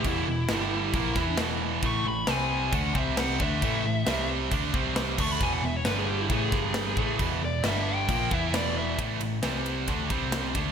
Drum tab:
CC |x-x-x-x-|x-x-x-x-|x-x-x-xx|x-x-x-x-|
RD |--------|--------|--------|--------|
SD |--o--oo-|--o---o-|--o---o-|--o--oo-|
BD |o---oo--|o---oo-o|o---oo-o|o---oo-o|

CC |x-x-x-x-|--------|
RD |--------|xxxxxxxx|
SD |--o---o-|--o---o-|
BD |o---oo--|o---oo-o|